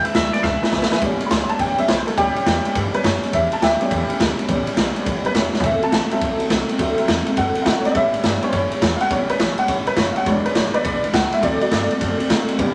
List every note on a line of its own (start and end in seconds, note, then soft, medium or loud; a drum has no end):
0.05 0.14 E3 soft
0.05 0.15 G#3 soft
0.05 0.16 D4 medium
0.05 0.15 E4 medium
0.05 0.11 B4 medium
0.05 0.11 E5 medium
0.05 0.14 E5 loud
0.05 0.11 G#5 medium
0.05 ride medium
0.15 0.33 D2 loud
0.15 0.34 E3 medium
0.15 0.34 G#3 medium
0.15 0.34 D4 medium
0.15 0.32 E4 medium
0.15 0.27 B4 medium
0.15 0.33 E5 medium
0.15 0.27 E5 medium
0.15 0.27 G#5 medium
0.15 snare loud
0.15 ride medium
0.33 0.44 E3 soft
0.33 0.44 G#3 medium
0.33 0.45 D4 medium
0.33 0.44 E4 soft
0.33 0.40 B4 medium
0.33 0.43 D5 medium
0.33 0.40 E5 medium
0.33 0.40 G#5 medium
0.33 snare soft
0.33 ride medium
0.43 0.62 C#2 loud
0.43 0.63 E2 medium
0.43 0.63 B2 medium
0.43 0.63 E3 medium
0.43 0.63 G#3 medium
0.43 0.63 D4 medium
0.43 0.61 E4 medium
0.43 0.55 B4 medium
0.43 1.00 E5 loud
0.43 0.55 E5 medium
0.43 0.56 G#5 medium
0.43 kick loud
0.43 snare medium
0.63 0.72 E3 soft
0.63 0.73 G#3 soft
0.63 0.74 D4 medium
0.63 0.73 E4 medium
0.63 0.69 B4 medium
0.63 0.69 E5 medium
0.63 0.69 G#5 medium
0.63 muted upright bass stroke medium
0.63 snare medium
0.73 0.91 B1 medium
0.73 0.92 E3 medium
0.73 0.92 G#3 medium
0.73 0.92 D4 medium
0.73 0.90 E4 medium
0.73 0.84 B4 medium
0.73 0.84 E5 medium
0.73 0.84 G#5 loud
0.73 kick medium
0.73 snare medium
0.82 snare loud
0.91 1.01 E3 medium
0.91 1.03 G#3 medium
0.91 1.02 D4 medium
0.91 1.02 E4 medium
0.91 0.98 B4 medium
0.91 0.98 E5 medium
0.91 0.98 G#5 loud
0.91 snare medium
1.02 1.20 A1 medium
1.02 1.21 A2 medium
1.02 1.21 E3 medium
1.02 1.76 G3 medium
1.02 1.21 G3 medium
1.02 1.77 B3 medium
1.02 1.77 C#4 medium
1.02 1.21 C#4 loud
1.02 1.19 E4 medium
1.02 kick loud
1.02 ride medium
1.20 1.32 C#4 medium
1.20 1.31 E4 medium
1.20 muted upright bass stroke medium
1.20 ride medium
1.24 1.31 G3 soft
1.24 1.29 B5 medium
1.30 1.49 C#2 loud
1.30 1.49 E3 medium
1.30 1.50 G3 medium
1.30 1.50 C#4 medium
1.30 1.48 E4 medium
1.30 1.49 C6 loud
1.30 snare loud
1.30 ride medium
1.49 1.60 G3 soft
1.49 1.60 C#4 soft
1.49 1.60 E4 soft
1.49 1.59 A5 loud
1.49 muted upright bass stroke medium
1.49 ride medium
1.59 1.78 A1 loud
1.59 1.78 A2 medium
1.59 1.79 E3 medium
1.59 1.79 G3 medium
1.59 1.78 C#4 medium
1.59 1.76 E4 medium
1.59 1.78 G5 medium
1.59 kick loud
1.59 ride medium
1.78 1.87 G3 soft
1.78 1.88 G3 medium
1.78 1.88 B3 soft
1.78 1.88 C#4 medium
1.78 1.89 C#4 medium
1.78 1.88 E4 medium
1.78 1.89 E5 medium
1.78 muted upright bass stroke medium
1.78 ride medium
1.88 2.07 B1 medium
1.88 2.07 E3 medium
1.88 2.08 G3 medium
1.88 2.08 C#4 medium
1.88 2.05 E4 medium
1.88 2.07 C5 medium
1.88 kick medium
1.88 snare loud
1.88 ride medium
2.07 2.17 G3 soft
2.07 2.18 C#4 medium
2.07 2.17 E4 medium
2.07 2.17 A4 medium
2.07 snare soft
2.07 ride medium
2.17 2.35 C#2 medium
2.17 2.36 A2 medium
2.17 2.36 E3 medium
2.17 2.62 G3 medium
2.17 2.37 G3 medium
2.17 2.63 B3 medium
2.17 2.63 C#4 medium
2.17 2.37 C#4 medium
2.17 2.35 E4 medium
2.17 2.74 G4 loud
2.17 kick loud
2.17 ride medium
2.36 2.47 G3 soft
2.36 2.47 C#4 soft
2.36 2.46 E4 medium
2.36 muted upright bass stroke medium
2.36 ride medium
2.46 2.64 E2 medium
2.46 2.65 E3 medium
2.46 2.66 G3 medium
2.46 2.65 C#4 medium
2.46 2.64 E4 medium
2.46 snare medium
2.46 ride medium
2.65 2.76 G3 soft
2.65 2.76 C#4 medium
2.65 2.75 E4 medium
2.65 ride medium
2.75 2.93 G2 medium
2.75 2.94 A2 medium
2.75 2.95 E3 medium
2.75 2.95 G3 medium
2.75 2.94 C#4 medium
2.75 2.93 E4 medium
2.75 kick loud
2.75 ride medium
2.93 3.03 G3 medium
2.93 3.05 G3 soft
2.93 3.03 B3 soft
2.93 3.04 C#4 medium
2.93 3.05 C#4 medium
2.93 3.04 E4 medium
2.93 3.04 B4 loud
2.93 ride medium
3.04 3.22 F#2 medium
3.04 3.23 E3 medium
3.04 3.24 G3 medium
3.04 3.23 C#4 medium
3.04 3.21 E4 medium
3.04 3.33 C#5 medium
3.04 kick medium
3.04 snare loud
3.04 ride medium
3.22 3.33 G3 soft
3.22 3.34 C#4 medium
3.22 3.33 E4 medium
3.22 snare soft
3.22 ride medium
3.33 3.51 E2 medium
3.33 3.52 A2 medium
3.33 3.52 E3 medium
3.33 3.53 G3 loud
3.33 3.52 C#4 medium
3.33 3.50 E4 medium
3.33 3.52 E5 medium
3.33 kick loud
3.33 ride medium
3.51 3.62 G3 soft
3.51 3.63 C#4 medium
3.51 3.62 E4 medium
3.51 3.63 A5 medium
3.51 ride medium
3.61 3.80 D2 loud
3.61 3.80 E3 medium
3.61 3.81 G3 medium
3.61 3.81 C#4 medium
3.61 3.79 E4 medium
3.61 4.16 G4 medium
3.61 4.19 E5 loud
3.61 snare loud
3.61 ride medium
3.80 3.98 G3 medium
3.80 3.91 G3 soft
3.80 3.98 B3 medium
3.80 3.92 C#4 soft
3.80 3.98 C#4 medium
3.80 3.91 E4 medium
3.80 muted upright bass stroke medium
3.80 ride medium
3.91 4.09 E2 loud
3.91 4.10 A2 medium
3.91 4.10 E3 medium
3.91 4.10 G3 medium
3.91 4.10 C#4 medium
3.91 4.08 E4 medium
3.91 kick loud
3.91 ride medium
4.09 4.19 G3 medium
4.09 4.20 C#4 medium
4.09 4.20 E4 medium
4.09 ride medium
4.19 4.37 D2 medium
4.19 4.38 E3 medium
4.19 4.39 G3 medium
4.19 4.38 C#4 medium
4.19 4.36 E4 medium
4.19 kick medium
4.19 snare loud
4.19 ride medium
4.38 4.48 G3 medium
4.38 4.49 C#4 medium
4.38 4.48 E4 medium
4.38 ride medium
4.49 4.66 C#2 loud
4.49 4.67 A2 medium
4.49 4.68 E3 loud
4.49 5.23 G3 medium
4.49 4.68 G3 loud
4.49 5.24 B3 medium
4.49 5.24 C#4 medium
4.49 4.67 C#4 loud
4.49 4.66 E4 loud
4.49 kick loud
4.49 ride medium
4.67 4.77 G3 medium
4.67 4.78 C#4 medium
4.67 4.77 E4 medium
4.67 muted upright bass stroke medium
4.67 ride medium
4.77 4.95 B1 medium
4.77 4.96 E3 medium
4.77 4.97 G3 medium
4.77 4.96 C#4 medium
4.77 4.94 E4 medium
4.77 snare loud
4.77 ride medium
4.95 5.06 G3 soft
4.95 5.07 C#4 medium
4.95 5.06 E4 medium
4.95 ride medium
5.06 5.25 A1 medium
5.06 5.25 A2 medium
5.06 5.25 E3 medium
5.06 5.26 G3 medium
5.06 5.26 C#4 medium
5.06 5.24 E4 loud
5.06 kick loud
5.06 ride medium
5.25 5.34 G3 soft
5.25 5.35 G3 soft
5.25 5.35 B3 soft
5.25 5.35 C#4 medium
5.25 5.36 C#4 soft
5.25 5.35 E4 medium
5.25 5.36 B4 medium
5.25 muted upright bass stroke medium
5.25 ride medium
5.35 5.53 E1 medium
5.35 5.54 E3 medium
5.35 5.54 G3 medium
5.35 5.54 C#4 medium
5.35 5.53 E4 medium
5.35 5.64 C#5 medium
5.35 kick medium
5.35 snare loud
5.35 ride medium
5.54 5.64 G3 soft
5.54 5.65 C#4 soft
5.54 5.64 E4 medium
5.54 snare medium
5.60 5.82 F#1 medium
5.60 5.83 D3 medium
5.60 kick loud
5.60 floor tom medium
5.60 ride medium
5.65 5.83 A3 medium
5.65 5.83 C4 medium
5.65 5.81 F#4 loud
5.65 5.83 E5 medium
5.82 5.92 A3 soft
5.82 5.94 C4 medium
5.82 5.93 F#4 medium
5.82 5.92 A5 medium
5.82 muted upright bass stroke medium
5.82 ride medium
5.92 6.10 A1 loud
5.92 6.11 D3 medium
5.92 6.12 A3 medium
5.92 6.11 C4 medium
5.92 6.09 F#4 medium
5.92 6.49 A5 medium
5.92 snare loud
5.92 ride medium
6.10 6.78 F#3 medium
6.10 6.21 A3 soft
6.10 6.78 C4 medium
6.10 6.22 C4 soft
6.10 6.79 E4 medium
6.10 6.21 F#4 medium
6.10 muted upright bass stroke medium
6.10 ride medium
6.21 6.39 B1 medium
6.21 6.40 D3 medium
6.21 6.41 A3 medium
6.21 6.40 C4 medium
6.21 6.38 F#4 medium
6.21 kick loud
6.21 ride medium
6.39 6.49 A3 medium
6.39 6.50 C4 medium
6.39 6.50 F#4 medium
6.39 ride medium
6.49 6.68 C2 loud
6.49 6.69 D3 medium
6.49 6.69 A3 medium
6.49 6.69 C4 medium
6.49 6.67 F#4 medium
6.49 kick medium
6.49 snare loud
6.49 ride medium
6.68 6.78 A3 soft
6.68 6.79 C4 medium
6.68 6.79 F#4 medium
6.68 muted upright bass stroke medium
6.68 ride medium
6.78 6.97 D2 medium
6.78 6.98 D3 medium
6.78 6.96 F#3 medium
6.78 6.98 A3 medium
6.78 6.97 C4 soft
6.78 6.98 C4 medium
6.78 6.97 E4 medium
6.78 6.96 F#4 loud
6.78 kick loud
6.78 ride loud
6.98 7.91 F#3 medium
6.98 7.08 A3 medium
6.98 7.91 C4 medium
6.98 7.09 C4 medium
6.98 7.92 E4 medium
6.98 7.08 F#4 medium
6.98 ride medium
7.07 7.27 E2 loud
7.07 7.27 D3 medium
7.07 7.27 A3 medium
7.07 7.27 C4 medium
7.07 7.25 F#4 medium
7.07 snare loud
7.07 ride medium
7.26 7.36 A3 soft
7.26 7.37 C4 medium
7.26 7.37 F#4 medium
7.26 muted upright bass stroke medium
7.26 ride medium
7.37 7.55 F#2 loud
7.37 7.56 D3 medium
7.37 7.56 A3 medium
7.37 7.56 C4 medium
7.37 7.54 F#4 medium
7.37 7.66 F#5 loud
7.37 kick loud
7.37 ride medium
7.55 7.66 A3 soft
7.55 7.67 C4 soft
7.55 7.66 F#4 medium
7.55 ride medium
7.62 7.84 A#2 medium
7.62 7.85 D3 medium
7.62 7.65 F5 medium
7.62 kick medium
7.62 snare loud
7.62 ride medium
7.67 7.85 A3 medium
7.67 7.85 C4 medium
7.67 7.83 F#4 medium
7.67 7.85 F#5 medium
7.81 7.95 F#4 medium
7.81 7.83 C#5 medium
7.85 7.96 A3 soft
7.85 7.96 C4 medium
7.85 7.95 D5 medium
7.85 muted upright bass stroke medium
7.85 snare soft
7.85 ride medium
7.92 8.14 A2 medium
7.92 8.13 A2 loud
7.92 8.14 E3 medium
7.92 8.42 G3 medium
7.92 7.94 D#5 medium
7.92 kick loud
7.92 ride medium
7.96 8.14 G3 medium
7.96 8.42 B3 medium
7.96 8.42 C#4 medium
7.96 8.14 C#4 medium
7.96 8.12 E4 medium
7.96 8.42 E5 loud
8.13 8.24 G3 soft
8.13 8.25 C#4 medium
8.13 8.24 E4 medium
8.13 muted upright bass stroke medium
8.13 ride medium
8.24 8.42 G2 medium
8.24 8.43 E3 medium
8.24 8.43 G3 medium
8.24 8.43 C#4 medium
8.24 8.41 E4 medium
8.24 snare loud
8.24 ride medium
8.42 8.52 G3 medium
8.42 8.53 G3 soft
8.42 8.52 B3 soft
8.42 8.53 C#4 medium
8.42 8.53 E4 medium
8.42 8.52 C#5 loud
8.42 muted upright bass stroke medium
8.42 ride medium
8.49 8.71 F#2 loud
8.49 8.71 A2 medium
8.49 8.72 E3 medium
8.49 8.52 C5 medium
8.49 kick loud
8.49 ride medium
8.54 8.72 G3 medium
8.54 8.71 C#4 medium
8.54 8.69 E4 medium
8.54 8.81 C#5 loud
8.71 8.81 G3 soft
8.71 8.83 C#4 soft
8.71 8.82 E4 medium
8.71 muted upright bass stroke medium
8.71 ride medium
8.81 9.00 E2 medium
8.81 9.00 E3 medium
8.81 9.01 G3 medium
8.81 9.00 C#4 medium
8.81 8.98 E4 medium
8.81 kick medium
8.81 snare loud
8.81 ride medium
8.97 9.11 E4 medium
8.97 8.99 F5 medium
8.97 snare soft
8.97 ride medium
9.01 9.10 G3 soft
9.01 9.10 C#4 medium
9.01 9.11 F#5 loud
9.10 9.28 C#2 loud
9.10 9.29 A2 medium
9.10 9.30 E3 medium
9.10 9.33 G3 medium
9.10 9.30 G3 medium
9.10 9.33 B3 medium
9.10 9.29 C#4 medium
9.10 9.33 C#4 medium
9.10 9.28 E4 medium
9.10 9.30 C#5 loud
9.10 kick loud
9.10 ride medium
9.29 9.39 G3 soft
9.29 9.40 C#4 medium
9.29 9.40 E4 medium
9.29 9.40 B4 medium
9.29 muted upright bass stroke soft
9.29 ride medium
9.39 9.58 A1 medium
9.39 9.58 E3 medium
9.39 9.59 G3 medium
9.39 9.58 C#4 medium
9.39 9.55 E4 medium
9.39 9.58 C#5 medium
9.39 snare loud
9.39 ride medium
9.57 9.67 G3 soft
9.57 9.68 C#4 soft
9.57 9.68 E4 medium
9.57 9.69 F#5 loud
9.57 muted upright bass stroke medium
9.57 ride medium
9.67 9.86 G1 loud
9.67 9.87 A2 medium
9.67 9.87 E3 medium
9.67 9.87 G3 medium
9.67 9.86 C#4 medium
9.67 9.84 E4 medium
9.67 9.87 C#5 medium
9.67 kick loud
9.67 ride loud
9.85 9.97 G3 soft
9.85 9.98 C#4 medium
9.85 9.97 E4 medium
9.85 9.98 B4 loud
9.85 muted upright bass stroke soft
9.85 ride medium
9.97 10.16 F#1 medium
9.97 10.16 E3 medium
9.97 10.17 G3 medium
9.97 10.16 C#4 medium
9.97 10.14 E4 medium
9.97 10.16 C#5 medium
9.97 kick medium
9.97 snare loud
9.97 ride medium
10.13 10.26 E4 medium
10.13 10.14 F5 medium
10.13 muted upright bass stroke medium
10.13 ride medium
10.17 10.26 G3 soft
10.17 10.27 C#4 medium
10.17 10.27 F#5 loud
10.25 10.45 E1 loud
10.25 10.45 E2 medium
10.25 10.45 B2 medium
10.25 10.45 E3 medium
10.25 10.72 F#3 medium
10.25 10.45 G#3 loud
10.25 10.72 G#3 medium
10.25 10.44 D4 medium
10.25 10.73 D4 medium
10.25 10.43 E4 medium
10.25 10.45 C#5 medium
10.25 kick loud
10.25 ride medium
10.44 10.53 E3 soft
10.44 10.54 G#3 soft
10.44 10.56 D4 medium
10.44 10.55 E4 medium
10.44 10.56 B4 medium
10.44 muted upright bass stroke medium
10.44 ride medium
10.55 10.74 G#1 loud
10.55 10.74 E3 medium
10.55 10.74 G#3 medium
10.55 10.73 D4 medium
10.55 10.72 E4 medium
10.55 10.74 C#5 medium
10.55 snare loud
10.55 ride medium
10.73 10.84 E3 soft
10.73 10.85 G#3 soft
10.73 10.85 D4 medium
10.73 10.84 E4 medium
10.73 11.01 B4 medium
10.73 11.03 D5 medium
10.73 muted upright bass stroke medium
10.73 ride medium
10.84 11.03 B1 loud
10.84 11.03 E2 medium
10.84 11.03 B2 medium
10.84 11.04 E3 medium
10.84 11.04 G#3 medium
10.84 11.03 D4 medium
10.84 11.01 E4 medium
10.84 kick loud
10.84 ride medium
11.03 11.11 E3 soft
11.03 11.13 G#3 soft
11.03 11.14 D4 medium
11.03 11.13 E4 medium
11.03 ride medium
11.13 11.32 C#2 loud
11.13 11.32 E3 medium
11.13 11.33 G#3 medium
11.13 11.31 D4 medium
11.13 11.30 E4 medium
11.13 11.32 F#5 medium
11.13 kick medium
11.13 snare loud
11.13 ride medium
11.31 11.41 E3 soft
11.31 11.42 G#3 medium
11.31 11.43 D4 medium
11.31 11.42 E4 medium
11.31 11.43 E5 medium
11.31 muted upright bass stroke medium
11.31 snare soft
11.31 ride medium
11.41 11.61 D2 loud
11.41 11.61 D3 medium
11.41 11.64 E3 medium
11.41 11.65 F#3 medium
11.41 11.61 A3 medium
11.41 11.65 C4 medium
11.41 11.62 C4 medium
11.41 11.59 F#4 medium
11.41 11.61 D5 medium
11.41 kick loud
11.41 ride medium
11.61 11.71 A3 soft
11.61 11.73 C4 soft
11.61 11.71 F#4 soft
11.61 12.45 F#4 medium
11.61 12.46 D5 loud
11.61 ride medium
11.71 11.90 G2 loud
11.71 11.90 D3 medium
11.71 11.91 A3 medium
11.71 11.90 C4 medium
11.71 11.88 F#4 medium
11.71 snare loud
11.71 ride medium
11.89 12.00 A3 soft
11.89 12.01 C4 medium
11.89 12.00 F#4 medium
11.89 ride medium
12.00 12.19 F#2 medium
12.00 12.19 D3 medium
12.00 12.20 A3 loud
12.00 12.19 C4 loud
12.00 12.17 F#4 loud
12.00 kick loud
12.00 ride medium
12.19 12.30 A3 medium
12.19 12.30 C4 medium
12.19 12.30 F#4 medium
12.19 ride medium
12.30 12.48 B2 loud
12.30 12.49 D3 medium
12.30 12.49 A3 medium
12.30 12.49 C4 medium
12.30 12.47 F#4 medium
12.30 kick medium
12.30 snare loud
12.30 ride medium
12.48 12.60 A3 medium
12.48 12.60 C4 medium
12.48 12.59 F#4 medium
12.48 muted upright bass stroke medium
12.48 ride medium
12.58 12.74 A2 medium
12.58 12.74 A2 loud
12.58 12.74 C#3 medium
12.58 12.74 E3 medium
12.58 12.74 G3 medium
12.58 12.74 G3 loud
12.58 12.74 B3 medium
12.58 12.74 C#4 loud
12.58 12.74 E4 loud
12.58 kick loud
12.58 ride medium